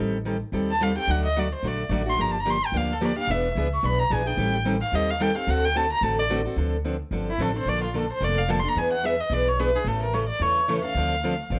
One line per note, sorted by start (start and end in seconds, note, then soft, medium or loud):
0.00 0.41 A1 medium
0.00 0.16 D#3 medium
0.00 0.16 G3 medium
0.00 0.17 C4 medium
0.00 0.17 G4 medium
0.00 0.17 A4 medium
0.25 0.35 D#3 medium
0.25 0.36 G3 medium
0.25 0.36 C4 medium
0.25 0.36 G4 medium
0.25 0.36 A4 medium
0.52 0.97 D#2 medium
0.52 0.71 D#3 medium
0.52 0.71 G3 medium
0.52 0.72 C4 medium
0.52 0.72 G4 medium
0.52 0.72 A4 medium
0.71 0.84 A5 loud
0.80 0.91 D#3 medium
0.80 0.91 G3 medium
0.80 0.91 C4 loud
0.80 0.91 G4 loud
0.80 0.91 A4 loud
0.80 0.97 F5 medium
0.95 1.08 C4 soft
0.95 1.08 G4 medium
0.95 1.07 A4 medium
0.95 1.12 G5 loud
1.07 1.52 D2 medium
1.07 1.26 D3 medium
1.07 1.26 F#3 medium
1.07 1.27 A3 medium
1.07 1.27 D4 medium
1.07 1.27 F#4 medium
1.07 1.25 F#5 medium
1.25 1.41 D#5 medium
1.36 1.46 D3 medium
1.36 1.46 F#3 medium
1.36 1.46 A3 medium
1.36 1.46 D4 loud
1.36 1.47 F#4 medium
1.36 1.53 D5 medium
1.55 1.69 C5 medium
1.63 1.86 A#1 medium
1.63 1.82 D3 medium
1.63 1.82 F#3 medium
1.63 1.82 A3 medium
1.63 1.82 D4 medium
1.63 1.82 F#4 medium
1.67 1.93 D5 medium
1.89 2.13 A1 medium
1.89 2.01 D3 medium
1.89 2.01 F#3 loud
1.89 2.01 A3 medium
1.89 2.01 D4 loud
1.89 2.02 F#4 loud
2.06 2.18 A3 soft
2.06 2.18 D4 medium
2.06 2.18 F#4 medium
2.06 2.22 C6 loud
2.17 2.61 G1 medium
2.17 2.36 D3 medium
2.17 2.37 F3 medium
2.17 2.37 A#3 medium
2.17 2.37 D4 medium
2.17 2.37 G4 medium
2.17 2.32 A#5 medium
2.31 2.42 A5 medium
2.40 2.52 A#5 loud
2.45 2.56 D3 medium
2.45 2.56 F3 medium
2.45 2.56 A#3 medium
2.45 2.56 D4 loud
2.45 2.56 G4 loud
2.50 2.67 C6 loud
2.66 2.78 G5 medium
2.72 3.17 D2 medium
2.72 2.91 D3 medium
2.72 2.92 F3 medium
2.72 2.92 A#3 medium
2.72 2.92 D4 medium
2.72 2.92 G4 medium
2.77 2.94 F5 medium
2.93 3.07 A4 medium
3.01 3.11 D3 medium
3.01 3.11 F3 medium
3.01 3.11 A#3 loud
3.01 3.11 D4 medium
3.01 3.11 G4 loud
3.05 3.18 D5 medium
3.16 3.29 A#3 medium
3.16 3.28 D4 medium
3.16 3.28 G4 medium
3.16 3.32 F5 loud
3.27 3.50 E1 medium
3.27 3.47 E3 medium
3.27 3.47 B3 medium
3.27 3.47 D4 medium
3.27 3.48 G#4 medium
3.27 3.57 E5 medium
3.55 3.79 C#2 medium
3.55 3.66 E3 medium
3.55 3.66 B3 medium
3.55 3.67 D4 medium
3.55 3.67 G#4 loud
3.73 3.87 C#6 medium
3.83 4.06 B1 medium
3.83 4.01 E3 medium
3.83 4.02 B3 medium
3.83 4.02 D4 medium
3.83 4.02 G#4 medium
3.83 4.01 B5 medium
3.99 4.14 A#5 loud
4.10 4.34 A#1 medium
4.10 4.21 E3 medium
4.10 4.21 B3 loud
4.10 4.21 D4 loud
4.10 4.21 G#4 loud
4.10 4.28 G#5 medium
4.26 4.38 B3 soft
4.26 4.38 D4 medium
4.26 4.37 G#4 medium
4.26 4.54 G5 medium
4.37 4.82 A1 medium
4.37 4.56 D#3 medium
4.37 4.56 G3 medium
4.37 4.56 C4 medium
4.37 4.56 G4 medium
4.37 4.57 A4 medium
4.65 4.75 D#3 medium
4.65 4.76 G3 medium
4.65 4.76 C4 loud
4.65 4.76 G4 loud
4.65 4.76 A4 medium
4.81 4.96 F5 medium
4.92 5.36 D#2 medium
4.92 5.11 D#3 medium
4.92 5.11 G3 medium
4.92 5.11 C4 medium
4.92 5.12 G4 medium
4.92 5.12 A4 medium
4.92 5.11 D#5 medium
5.10 5.23 F5 medium
5.20 5.30 D#3 loud
5.20 5.30 G3 loud
5.20 5.30 C4 medium
5.20 5.31 G4 loud
5.20 5.31 A4 loud
5.20 5.36 G5 loud
5.35 5.47 C4 medium
5.35 5.47 G4 medium
5.35 5.47 A4 medium
5.35 5.52 F5 medium
5.47 5.91 D2 medium
5.47 5.66 D3 medium
5.47 5.66 A3 medium
5.47 5.66 C4 medium
5.47 5.66 F#4 medium
5.47 5.66 A4 medium
5.47 5.67 F#5 loud
5.65 5.78 G5 loud
5.75 5.85 D3 medium
5.75 5.85 A3 medium
5.75 5.86 C4 loud
5.75 5.86 F#4 loud
5.75 5.86 A4 loud
5.75 5.92 A5 loud
5.92 6.05 A#5 loud
6.01 6.46 A1 medium
6.01 6.21 D3 medium
6.01 6.21 A3 medium
6.01 6.21 C4 medium
6.01 6.21 F#4 medium
6.01 6.22 A4 medium
6.01 6.18 A5 medium
6.19 6.26 D5 loud
6.29 6.40 D3 loud
6.29 6.40 A3 loud
6.29 6.40 C4 loud
6.29 6.40 F#4 loud
6.29 6.40 A4 loud
6.45 6.57 C4 medium
6.45 6.57 F#4 medium
6.45 6.57 A4 medium
6.56 7.01 D2 medium
6.56 6.75 D3 medium
6.56 6.76 F3 medium
6.56 6.76 C4 medium
6.56 6.76 D4 medium
6.56 6.76 A4 medium
6.84 6.95 D3 medium
6.84 6.95 F3 medium
6.84 6.95 C4 medium
6.84 6.95 D4 medium
6.84 6.95 A4 medium
7.11 7.35 G1 medium
7.11 7.30 D3 medium
7.11 7.30 F3 medium
7.11 7.31 C4 medium
7.11 7.31 D4 medium
7.11 7.31 A4 medium
7.30 7.43 E4 medium
7.38 7.62 A1 medium
7.38 7.50 D3 medium
7.38 7.50 F3 loud
7.38 7.50 C4 medium
7.38 7.50 D4 loud
7.38 7.50 A4 loud
7.38 7.56 A4 medium
7.54 7.67 C4 medium
7.54 7.66 D4 medium
7.54 7.66 A4 medium
7.58 7.70 C5 medium
7.65 8.10 A#1 medium
7.65 7.85 D3 medium
7.65 7.85 F3 medium
7.65 7.85 A#3 medium
7.65 7.85 D4 medium
7.65 7.86 A4 medium
7.65 7.83 D5 loud
7.84 7.99 F4 soft
7.94 8.04 D3 medium
7.94 8.04 F3 medium
7.94 8.04 A#3 medium
7.94 8.05 D4 loud
7.94 8.05 A4 medium
7.94 8.12 A4 medium
8.12 8.25 C5 loud
8.21 8.65 F1 medium
8.21 8.40 D3 medium
8.21 8.40 F3 medium
8.21 8.40 A#3 medium
8.21 8.40 D4 medium
8.21 8.40 A4 medium
8.21 8.40 D5 medium
8.38 8.52 F5 medium
8.48 8.59 D3 medium
8.48 8.59 F3 loud
8.48 8.59 A#3 loud
8.48 8.59 D4 loud
8.48 8.59 A4 loud
8.48 8.61 A5 medium
8.59 8.70 C6 loud
8.64 8.76 A#3 soft
8.64 8.75 D4 medium
8.64 8.76 A4 medium
8.69 8.79 A#5 medium
8.75 9.20 E2 medium
8.75 8.94 E3 medium
8.75 8.95 B3 medium
8.75 8.95 D4 medium
8.75 8.95 G#4 medium
8.75 8.92 G#5 medium
8.93 9.07 F#5 loud
9.03 9.14 E3 medium
9.03 9.14 B3 medium
9.03 9.14 D4 loud
9.03 9.14 G#4 medium
9.03 9.22 E5 medium
9.20 9.35 D#5 medium
9.30 9.74 B1 medium
9.30 9.49 E3 medium
9.30 9.49 B3 medium
9.30 9.50 D4 medium
9.30 9.50 G#4 medium
9.30 9.50 D5 medium
9.48 9.61 C#5 medium
9.59 9.69 E3 medium
9.59 9.69 B3 loud
9.59 9.69 D4 loud
9.59 9.70 G#4 loud
9.59 9.77 B4 medium
9.75 9.86 B3 soft
9.75 9.86 D4 medium
9.75 9.89 G#4 medium
9.84 10.29 A1 medium
9.84 10.04 C#3 medium
9.84 10.05 E3 medium
9.84 10.05 A3 medium
9.84 10.05 C#4 medium
9.84 10.05 A4 medium
9.84 10.01 A4 medium
10.02 10.15 A#4 medium
10.13 10.23 C#3 medium
10.13 10.24 E3 medium
10.13 10.24 A3 medium
10.13 10.24 C#4 loud
10.13 10.24 A4 medium
10.13 10.28 C#5 medium
10.29 10.43 D5 medium
10.40 10.84 E2 medium
10.40 10.59 C#3 medium
10.40 10.59 E3 medium
10.40 10.59 A3 medium
10.40 10.60 C#4 medium
10.40 10.60 A4 medium
10.40 10.84 C#5 medium
10.68 10.78 C#3 medium
10.68 10.79 E3 loud
10.68 10.79 A3 loud
10.68 10.79 C#4 loud
10.68 10.79 A4 loud
10.84 10.96 A3 soft
10.84 10.96 C#4 medium
10.84 10.95 A4 medium
10.84 11.47 F5 medium
10.95 11.39 D2 medium
10.95 11.14 D3 medium
10.95 11.14 F3 medium
10.95 11.14 C4 medium
10.95 11.15 D4 medium
10.95 11.15 A4 medium
11.23 11.33 D3 medium
11.23 11.34 F3 medium
11.23 11.34 C4 medium
11.23 11.34 D4 medium
11.23 11.34 A4 medium
11.50 11.59 A1 medium
11.50 11.59 D3 medium
11.50 11.59 F3 medium
11.50 11.59 C4 medium
11.50 11.59 D4 medium
11.50 11.59 A4 medium